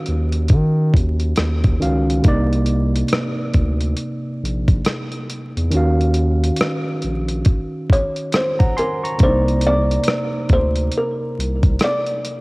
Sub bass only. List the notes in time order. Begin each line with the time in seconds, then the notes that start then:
0.08 D#2
0.50 D#3
0.94 D#2
1.38 D#2
1.82 C#2
2.25 C2
3.55 D2
4.43 A#1
5.56 E2
5.73 D#2
7.04 A#1
9.21 C2
10.50 D2
11.38 C2